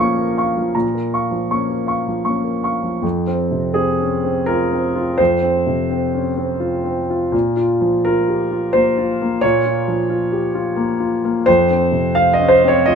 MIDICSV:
0, 0, Header, 1, 2, 480
1, 0, Start_track
1, 0, Tempo, 761421
1, 467, Time_signature, 3, 2, 24, 8
1, 1915, Tempo, 723764
1, 2875, Tempo, 709220
1, 5755, Tempo, 686499
1, 8698, End_track
2, 0, Start_track
2, 0, Title_t, "Grand piano"
2, 0, Program_c, 0, 0
2, 0, Control_c, 0, 64, 127
2, 0, Note_on_c, 0, 46, 63
2, 0, Note_on_c, 0, 53, 48
2, 0, Note_on_c, 0, 58, 42
2, 0, Note_on_c, 0, 61, 43
2, 0, Note_on_c, 0, 70, 47
2, 0, Note_on_c, 0, 77, 45
2, 0, Note_on_c, 0, 82, 57
2, 0, Note_on_c, 0, 85, 49
2, 66, Note_off_c, 0, 53, 0
2, 114, Note_off_c, 0, 70, 0
2, 114, Note_on_c, 0, 70, 41
2, 183, Note_off_c, 0, 85, 0
2, 239, Note_off_c, 0, 77, 0
2, 239, Note_on_c, 0, 77, 43
2, 240, Note_on_c, 0, 85, 45
2, 301, Note_off_c, 0, 70, 0
2, 341, Note_off_c, 0, 77, 0
2, 342, Note_off_c, 0, 85, 0
2, 356, Note_on_c, 0, 53, 35
2, 443, Note_off_c, 0, 61, 0
2, 444, Note_off_c, 0, 58, 0
2, 471, Note_off_c, 0, 82, 0
2, 471, Note_on_c, 0, 82, 38
2, 474, Note_off_c, 0, 46, 0
2, 474, Note_on_c, 0, 46, 45
2, 480, Control_c, 0, 64, 0
2, 544, Note_off_c, 0, 53, 0
2, 596, Note_on_c, 0, 70, 38
2, 604, Control_c, 0, 64, 127
2, 662, Note_off_c, 0, 82, 0
2, 718, Note_on_c, 0, 77, 30
2, 718, Note_on_c, 0, 85, 36
2, 785, Note_off_c, 0, 70, 0
2, 822, Note_off_c, 0, 77, 0
2, 822, Note_off_c, 0, 85, 0
2, 826, Note_on_c, 0, 53, 34
2, 938, Note_off_c, 0, 46, 0
2, 950, Note_on_c, 0, 58, 30
2, 951, Note_on_c, 0, 61, 34
2, 952, Note_on_c, 0, 85, 38
2, 1019, Note_off_c, 0, 53, 0
2, 1067, Note_on_c, 0, 70, 33
2, 1142, Note_off_c, 0, 85, 0
2, 1178, Note_on_c, 0, 77, 35
2, 1186, Note_on_c, 0, 85, 38
2, 1259, Note_off_c, 0, 70, 0
2, 1290, Note_off_c, 0, 77, 0
2, 1295, Note_off_c, 0, 85, 0
2, 1310, Note_on_c, 0, 53, 33
2, 1404, Note_off_c, 0, 58, 0
2, 1405, Note_off_c, 0, 61, 0
2, 1417, Note_on_c, 0, 85, 36
2, 1422, Note_on_c, 0, 58, 33
2, 1423, Note_on_c, 0, 61, 32
2, 1503, Note_off_c, 0, 53, 0
2, 1540, Note_on_c, 0, 70, 34
2, 1619, Note_off_c, 0, 85, 0
2, 1661, Note_on_c, 0, 77, 33
2, 1665, Note_on_c, 0, 85, 37
2, 1743, Note_off_c, 0, 70, 0
2, 1777, Note_off_c, 0, 77, 0
2, 1779, Note_off_c, 0, 85, 0
2, 1784, Note_on_c, 0, 53, 31
2, 1886, Note_off_c, 0, 58, 0
2, 1887, Note_off_c, 0, 61, 0
2, 1904, Note_on_c, 0, 41, 51
2, 1909, Note_off_c, 0, 53, 0
2, 1925, Control_c, 0, 64, 0
2, 2051, Control_c, 0, 64, 127
2, 2070, Note_on_c, 0, 60, 43
2, 2227, Note_on_c, 0, 48, 38
2, 2332, Note_off_c, 0, 60, 0
2, 2380, Note_on_c, 0, 68, 63
2, 2391, Note_on_c, 0, 60, 39
2, 2491, Note_off_c, 0, 48, 0
2, 2552, Note_on_c, 0, 61, 36
2, 2651, Note_off_c, 0, 60, 0
2, 2712, Note_on_c, 0, 60, 43
2, 2714, Note_off_c, 0, 61, 0
2, 2860, Note_on_c, 0, 70, 76
2, 2864, Note_off_c, 0, 68, 0
2, 2874, Note_on_c, 0, 65, 40
2, 2967, Note_off_c, 0, 60, 0
2, 3038, Note_on_c, 0, 60, 40
2, 3130, Note_off_c, 0, 65, 0
2, 3191, Note_on_c, 0, 65, 46
2, 3294, Note_off_c, 0, 60, 0
2, 3324, Note_off_c, 0, 41, 0
2, 3343, Note_on_c, 0, 72, 75
2, 3349, Note_off_c, 0, 70, 0
2, 3352, Note_on_c, 0, 41, 49
2, 3367, Control_c, 0, 64, 0
2, 3452, Note_off_c, 0, 65, 0
2, 3463, Control_c, 0, 64, 127
2, 3511, Note_on_c, 0, 60, 43
2, 3673, Note_on_c, 0, 48, 39
2, 3769, Note_off_c, 0, 60, 0
2, 3835, Note_on_c, 0, 60, 40
2, 3929, Note_off_c, 0, 48, 0
2, 3995, Note_on_c, 0, 61, 36
2, 4091, Note_off_c, 0, 60, 0
2, 4153, Note_on_c, 0, 60, 42
2, 4156, Note_off_c, 0, 61, 0
2, 4306, Note_on_c, 0, 65, 43
2, 4415, Note_off_c, 0, 60, 0
2, 4469, Note_on_c, 0, 60, 42
2, 4555, Note_off_c, 0, 72, 0
2, 4572, Note_off_c, 0, 65, 0
2, 4645, Note_on_c, 0, 65, 42
2, 4732, Note_off_c, 0, 60, 0
2, 4773, Note_off_c, 0, 41, 0
2, 4794, Note_on_c, 0, 46, 52
2, 4804, Note_off_c, 0, 65, 0
2, 4814, Control_c, 0, 64, 0
2, 4944, Control_c, 0, 64, 127
2, 4959, Note_on_c, 0, 65, 43
2, 5125, Note_on_c, 0, 53, 42
2, 5217, Note_off_c, 0, 65, 0
2, 5285, Note_on_c, 0, 70, 72
2, 5295, Note_on_c, 0, 65, 43
2, 5379, Note_off_c, 0, 53, 0
2, 5444, Note_on_c, 0, 67, 37
2, 5542, Note_off_c, 0, 65, 0
2, 5600, Note_off_c, 0, 67, 0
2, 5600, Note_on_c, 0, 65, 42
2, 5747, Note_on_c, 0, 72, 79
2, 5754, Note_on_c, 0, 58, 42
2, 5757, Note_off_c, 0, 70, 0
2, 5853, Note_off_c, 0, 65, 0
2, 5920, Note_on_c, 0, 65, 45
2, 6014, Note_off_c, 0, 58, 0
2, 6087, Note_on_c, 0, 58, 49
2, 6176, Note_off_c, 0, 65, 0
2, 6205, Note_off_c, 0, 46, 0
2, 6225, Note_on_c, 0, 73, 80
2, 6233, Note_off_c, 0, 72, 0
2, 6242, Note_on_c, 0, 46, 60
2, 6248, Control_c, 0, 64, 0
2, 6336, Note_off_c, 0, 58, 0
2, 6349, Control_c, 0, 64, 127
2, 6396, Note_on_c, 0, 65, 46
2, 6549, Note_on_c, 0, 53, 45
2, 6644, Note_off_c, 0, 65, 0
2, 6701, Note_on_c, 0, 65, 42
2, 6800, Note_off_c, 0, 53, 0
2, 6858, Note_on_c, 0, 67, 37
2, 6957, Note_off_c, 0, 65, 0
2, 7017, Note_on_c, 0, 65, 47
2, 7020, Note_off_c, 0, 67, 0
2, 7169, Note_on_c, 0, 58, 53
2, 7276, Note_off_c, 0, 65, 0
2, 7335, Note_on_c, 0, 65, 41
2, 7418, Note_off_c, 0, 73, 0
2, 7433, Note_off_c, 0, 58, 0
2, 7506, Note_on_c, 0, 58, 50
2, 7598, Note_off_c, 0, 65, 0
2, 7641, Note_off_c, 0, 46, 0
2, 7656, Note_on_c, 0, 72, 90
2, 7666, Note_on_c, 0, 41, 58
2, 7667, Note_off_c, 0, 58, 0
2, 7679, Control_c, 0, 64, 0
2, 7793, Control_c, 0, 64, 127
2, 7830, Note_on_c, 0, 60, 46
2, 7976, Note_on_c, 0, 48, 43
2, 8086, Note_off_c, 0, 60, 0
2, 8139, Note_on_c, 0, 77, 81
2, 8144, Note_off_c, 0, 72, 0
2, 8148, Note_on_c, 0, 60, 43
2, 8241, Note_off_c, 0, 48, 0
2, 8266, Note_off_c, 0, 77, 0
2, 8268, Note_on_c, 0, 75, 76
2, 8308, Note_on_c, 0, 61, 40
2, 8373, Note_on_c, 0, 72, 79
2, 8391, Note_off_c, 0, 75, 0
2, 8409, Note_off_c, 0, 60, 0
2, 8472, Note_off_c, 0, 61, 0
2, 8479, Note_on_c, 0, 60, 50
2, 8504, Note_off_c, 0, 72, 0
2, 8509, Note_on_c, 0, 73, 77
2, 8633, Note_off_c, 0, 73, 0
2, 8633, Note_on_c, 0, 75, 82
2, 8645, Note_on_c, 0, 65, 49
2, 8698, Note_off_c, 0, 41, 0
2, 8698, Note_off_c, 0, 60, 0
2, 8698, Note_off_c, 0, 65, 0
2, 8698, Note_off_c, 0, 75, 0
2, 8698, End_track
0, 0, End_of_file